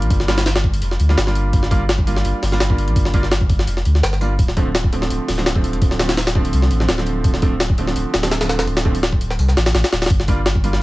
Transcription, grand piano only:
Already playing: G3 A#3 D4 F4
0.28 G3 A#3 D4 F4
1.09 G3 A#3 D4 F4
1.27 G3 A#3 D4 F4
1.71 G3 A#3 D4 F4
2.07 G3 A#3 D4 F4
2.52 G3 A#3 D4 F4
2.70 G3 A#3 D4 F4
3.14 G3 A#3 D4 F4
4.21 G3 A#3 D4 F4
4.57 D3 F3 A3 C4
4.92 D3 F3 A3 C4
5.38 D3 F3 A3 C4
5.56 D3 F3 A3 C4
6.00 D3 F3 A3 C4
6.35 D3 F3 A3 C4
6.80 D3 F3 A3 C4
6.98 D3 F3 A3 C4
7.42 D3 F3 A3 C4
7.78 D3 F3 A3 C4
8.23 D3 F3 A3 C4
8.41 D3 F3 A3 C4
8.85 D3 F3 A3 C4
10.28 G3 A#3 D4 F4
10.64 G3 A#3 D4 F4

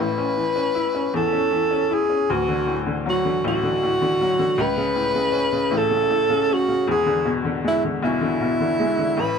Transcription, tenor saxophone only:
0.00 B4
1.16 A4
1.94 G#4
2.32 F#4
3.10 F#4
3.48 F#4
4.62 B4
5.77 A4
6.53 F#4
6.91 G#4
7.68 E4
8.05 E4
9.20 B4

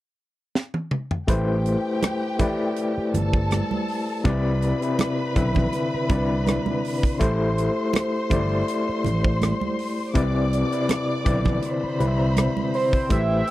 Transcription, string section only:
1.29 G4 G5
3.16 A4 A5
4.25 B4 B5
7.21 C5 C6
10.16 D5 D6
11.64 C5 B5
13.09 E4 C5 G5

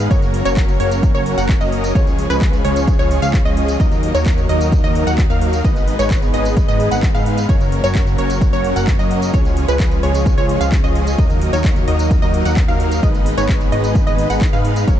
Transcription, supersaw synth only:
0.11 F#3 A#3 C#4 A#4 C#5
0.45 F#3 A#3 C#4 A#4 C#5
0.80 F#3 A#3 C#4 A#4 C#5
1.14 F#3 A#3 C#4 A#4 C#5
1.38 F#3 A#3 C#4 A#4 F#5
1.61 F#3 A#3 C#4 A#4 D#5
1.95 F3 G#3 C#4 G#4 C#5
2.30 F3 G#3 C#4 G#4 B4
2.64 F3 G#3 C#4 G#4 C#5
2.99 F3 G#3 C#4 G#4 C#5
3.22 F3 G#3 C#4 G#4 F5
3.45 F3 G#3 C#4 G#4 D#5
3.80 F#3 A#3 D#4 A#4 D#5
4.15 F#3 A#3 D#4 A#4 C#5
4.49 F#3 A#3 D#4 A#4 D#5
4.84 F#3 A#3 D#4 A#4 D#5
5.07 F#3 A#3 D#4 A#4 F#5
5.30 F#3 A#3 D#4 A#4 F5
5.65 G#3 B3 D#4 B4 D#5
5.99 G#3 B3 D#4 B4 C#5
6.34 G#3 B3 D#4 B4 D#5
6.68 G#3 B3 D#4 B4 D#5
6.91 G#3 B3 D#4 B4 F#5
7.15 G#3 B3 D#4 B4 F5
7.49 F#3 A#3 C#4 A#4 C#5
7.84 F#3 A#3 C#4 A#4 C#5
8.18 F#3 A#3 C#4 A#4 C#5
8.53 F#3 A#3 C#4 A#4 C#5
8.76 F#3 A#3 C#4 A#4 F#5
8.99 F#3 A#3 C#4 A#4 D#5
9.34 F3 G#3 C#4 G#4 C#5
9.68 F3 G#3 C#4 G#4 B4
10.03 F3 G#3 C#4 G#4 C#5
10.38 F3 G#3 C#4 G#4 C#5
10.61 F3 G#3 C#4 G#4 F5
10.84 F3 G#3 C#4 G#4 D#5
11.18 F#3 A#3 D#4 A#4 D#5
11.53 F#3 A#3 D#4 A#4 C#5
11.88 F#3 A#3 D#4 A#4 D#5
12.22 F#3 A#3 D#4 A#4 D#5
12.45 F#3 A#3 D#4 A#4 F#5
12.68 F#3 A#3 D#4 A#4 F5
13.03 G#3 B3 D#4 B4 D#5
13.38 G#3 B3 D#4 B4 C#5
13.72 G#3 B3 D#4 B4 D#5
14.07 G#3 B3 D#4 B4 D#5
14.30 G#3 B3 D#4 B4 F#5
14.53 G#3 B3 D#4 B4 F5
14.88 F#3 A#3 C#4 A#4 C#5

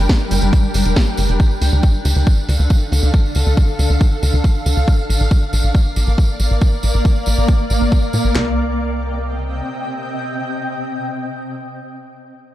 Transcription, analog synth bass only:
0.31 G1
0.42 G1
0.75 G1
0.85 F1
1.18 G1
1.29 F1
1.62 D2
1.73 D2
2.05 D2
2.16 D2
2.49 D2
2.59 D2
2.92 D2
3.03 D2
3.35 D2
3.46 D2
3.79 D2
3.90 D2
4.23 D2
4.33 D2
4.66 D2
4.77 D2
5.09 A#1
5.20 A#1
5.53 A#1
5.64 A#1
5.96 A#1
6.07 A#1
6.40 A#1
6.51 A#1
6.83 A#1
6.94 A#1
7.27 A#1
7.38 A#1
7.70 A#1
7.81 A#1
8.14 A#2
8.24 A#1
8.35 C2

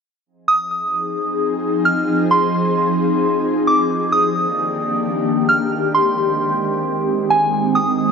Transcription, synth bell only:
0.48 D#6
1.85 F6
2.31 C6
3.67 D6
4.12 D#6
5.49 F6
5.94 C6
7.31 G#5
7.75 D#6

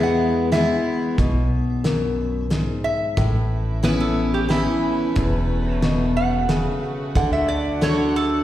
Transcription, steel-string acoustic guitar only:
Already playing: E2 E3 G#3 B3 E4
0.52 E3 G#3 B3 E4
1.18 B2
1.84 F#2
2.50 G#2
3.17 A2
3.83 E3 B3 C#4 E4
4.49 E3 B3 C#4 E4
5.16 E2
5.82 B2
6.49 C#3
7.15 D3
7.81 D3 A3 D4 F#4

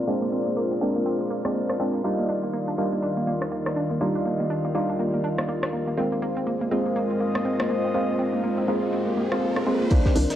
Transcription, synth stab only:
0.07 G#3 A#3 C4 D4
0.81 G#3 A#3 C4 D4
1.45 G#3 A#3 C4 D4
1.80 G#3 A#3 C4 D4
2.04 G3 D4 D#4 F4
2.78 G3 D4 D#4 F4
4.01 G3 D4 D#4 F4
4.75 G3 D4 D#4 F4
5.98 G#3 A#3 C4 F4
6.71 G#3 A#3 C4 F4
7.94 G#3 A#3 C4 F4
8.68 G#3 A#3 C4 F4
9.32 G#3 A#3 C4 F4
9.66 G#3 A#3 C4 F4
9.91 D#3 A#3 C4 D4

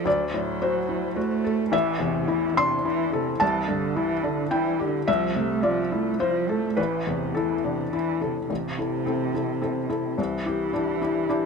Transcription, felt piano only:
0.05 D2 D5
0.34 A2
0.62 F#4 C5
0.89 E4
1.16 F#4
1.44 A4
1.72 A1 E5
2.00 E2
2.28 E4
2.57 D4 C6
2.85 E4
3.13 A4
3.40 C2 A5
3.68 G2
3.97 E4
4.23 D4
4.51 E4 G5
4.79 G4
5.08 C2 E5
5.36 C3
5.63 F4 D5
5.92 E4
6.20 F4 C5
6.49 A4
6.77 A1 B4
7.07 E2
7.35 E4 A4
7.64 D4
7.93 E4
8.22 A4
8.50 A1
8.78 E4 A4
9.06 C4 E4 A4
9.34 E4 A4
9.61 C4 E4 A4
9.89 E4 A4
10.18 C2
10.46 E4 G4
10.73 D4 E4 G4
11.01 E4 G4
11.29 D4 E4 G4

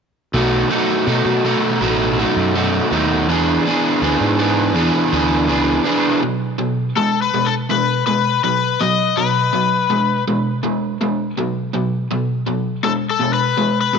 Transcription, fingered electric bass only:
0.34 B1
1.07 B2
1.25 B2
1.81 A1
2.36 F#2
2.91 D#2
3.28 E2
4.02 D2
4.21 G#2
4.75 E2
5.13 D2
5.49 C#2

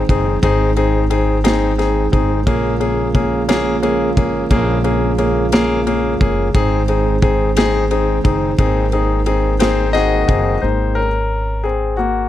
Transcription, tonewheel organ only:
Already playing: D#3 G#3 C4
2.46 C#3 F3 A#3 F4
6.54 D#3 C4
8.59 A#3

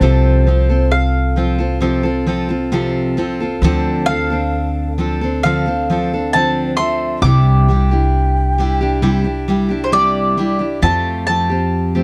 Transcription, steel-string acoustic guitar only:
0.01 C3 F3 C4 F4 A4
0.47 F3 C4 F4 A4
0.69 C4 F4 A4
1.36 F3 C4 F4 A4
1.59 C4 F4 A4
1.80 C3 F3 C4 F4 A4
2.03 C4 F4 A4
2.26 F3 C4 F4 A4
2.49 C4 F4 A4
2.72 C3 F3 C4 F4 A4
3.17 F3 C4 F4 A4
3.40 C4 F4 A4
3.63 D3 F3 C4 D4 A4
4.07 F3 C4 D4 A4
4.30 C4 D4 A4
4.98 F3 C4 D4 A4
5.21 C4 D4 A4
5.45 D3 F3 C4 D4 A4
5.66 C4 D4 A4
5.90 F3 C4 D4 A4
6.13 C4 D4 A4
6.35 D3 F3 C4 D4 A4
6.78 F3 C4 D4 A4
7.24 C3 G3 D4 E4 G4
7.68 G3 D4 E4 G4
7.91 D4 E4 G4
8.58 G3 D4 E4 G4
8.81 D4 E4 G4
9.02 C3 G3 D4 E4 G4
9.24 D4 E4 G4
9.48 G3 D4 E4 G4
9.69 D4 E4 G4
9.92 C3 G3 D4 E4 G4
10.37 G3 D4 E4 G4
10.59 D4 E4 G4
10.82 F3 A3 C4 F4 G4
11.27 A3 C4 F4 G4
11.49 C4 F4 G4
11.95 F3 A3 C4 F4 G4

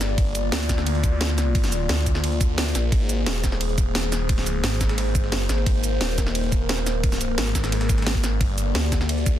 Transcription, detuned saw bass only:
0.01 G1
0.18 G1
0.52 D2
1.89 D2
2.75 A#1
2.92 G#1
3.26 D#1
4.22 D1
4.49 C#1
4.64 G#1
5.24 G1
5.49 G#1
5.66 G#1
6.01 D#1
6.99 C#1
7.21 B0
7.38 G#1
7.55 G#1
8.41 G1
8.75 D2

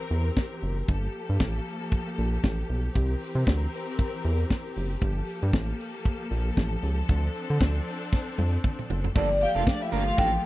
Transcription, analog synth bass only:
0.11 E2
0.63 F#1
0.89 G1
1.29 G2
1.40 A1
2.18 A#1
2.44 A1
2.70 B1
2.96 C2
3.35 C3
3.47 D2
4.25 E2
4.77 F#1
5.02 G1
5.43 G2
5.53 A1
6.31 A#1
6.57 A1
6.83 C#2
7.09 D2
7.50 D3
7.61 D2
8.38 F2
8.90 F#1
9.15 G1
9.55 F1
9.93 G1
10.18 A1

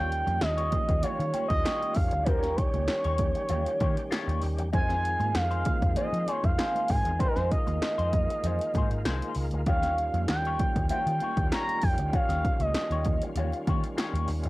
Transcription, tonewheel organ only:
Already playing: D#3 G3 C#4 F4
2.26 G4
4.74 D#3 G#3 C4 F4
7.21 A#3
9.69 G3 C#4

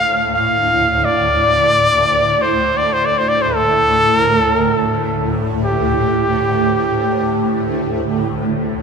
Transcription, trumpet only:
Already playing: F5
0.34 F5
1.05 D5
2.42 C5
2.77 D5
2.93 C5
3.06 D5
3.18 C5
3.29 D5
3.42 C5
3.55 A4
4.20 A#4
4.37 A4
4.56 A#4
4.74 A4
5.63 G4

